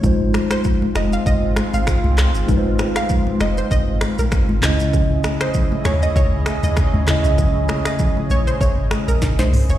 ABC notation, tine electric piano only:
X:1
M:4/4
L:1/8
Q:"Swing 16ths" 1/4=98
K:Ab
V:1 name="Tine electric piano"
[A,EFc]8 | [A,EF_c=c]6- [A,EF_c=c] [D,D_Fe]- | [D,D_Fe]6- [D,DFe] [D,DFe]- | [D,D_Fe]6- [D,DFe] z |]